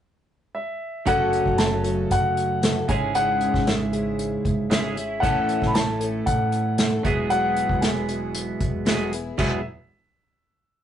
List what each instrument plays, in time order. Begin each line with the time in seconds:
0.55 grand piano E5
1.05 upright bass F#1, clean electric guitar F#2 C#3 A3, twelve-string acoustic guitar F#3 C#4 F#4 A4, grand piano F#5, kick, closed hi-hat
1.33 closed hi-hat
1.45 upright bass F#1, kick
1.58 twelve-string acoustic guitar F#3 C#4 F#4 A4, grand piano A5, snare, closed hi-hat
1.83 twelve-string acoustic guitar C#4 F#4 A4, closed hi-hat
2.10 upright bass F#2, grand piano F#5, kick, closed hi-hat
2.37 closed hi-hat
2.62 twelve-string acoustic guitar F#3 C#4 F#4 A4, snare, closed hi-hat
2.88 upright bass G#1, clean electric guitar G#2 C#3, twelve-string acoustic guitar G#3 C#4 E4 G#4, grand piano G#5, kick, closed hi-hat
3.14 twelve-string acoustic guitar G#2 C#3 G#3 C#4 E4 G#4, grand piano F#5, closed hi-hat
3.41 closed hi-hat
3.54 upright bass G#1, kick, snare
3.66 twelve-string acoustic guitar G#3 C#4 E4 G#4, grand piano E5, snare, closed hi-hat
3.93 twelve-string acoustic guitar G#3 C#4 E4 G#4, closed hi-hat
4.19 closed hi-hat
4.45 upright bass G#1, kick, closed hi-hat
4.70 clean electric guitar G#2 C#3, twelve-string acoustic guitar G#3 C#4 E4 G#4, grand piano E5, snare, closed hi-hat
4.96 twelve-string acoustic guitar G#3 C#4 E4 G#4, closed hi-hat
5.20 upright bass A1, twelve-string acoustic guitar A2 E3 A3 C#4 E4 A4, grand piano F#5, kick, closed hi-hat
5.49 closed hi-hat
5.62 upright bass A1, kick, snare
5.67 grand piano B5
5.74 twelve-string acoustic guitar A3 C#4 E4 A4, grand piano A5, snare, closed hi-hat
6.00 twelve-string acoustic guitar A3 C#4 E4 A4, closed hi-hat
6.26 upright bass A2, grand piano F#5, kick, closed hi-hat
6.52 closed hi-hat
6.78 twelve-string acoustic guitar A3 C#4 E4 A4, snare, closed hi-hat
7.03 upright bass E1, clean electric guitar E2 B2 F#3 G#3, twelve-string acoustic guitar B3 E4 G#4, grand piano E5, kick, closed hi-hat
7.30 twelve-string acoustic guitar E3 F#3 B3 E4 G#4, grand piano F#5, closed hi-hat
7.56 closed hi-hat
7.69 upright bass E1, kick
7.81 twelve-string acoustic guitar F#3 B3 E4 G#4, grand piano G#5, snare, closed hi-hat
8.08 twelve-string acoustic guitar B3 E4 G#4, closed hi-hat
8.35 closed hi-hat
8.61 upright bass E1, kick, closed hi-hat
8.85 clean electric guitar E2 B2 G#3, twelve-string acoustic guitar F#3 B3 E4 G#4, snare, closed hi-hat
9.12 twelve-string acoustic guitar B3 E4 G#4, closed hi-hat
9.37 upright bass E1, clean electric guitar E2 B2 G#3, twelve-string acoustic guitar E3 F#3 B3 E4 G#4, grand piano E5, kick, crash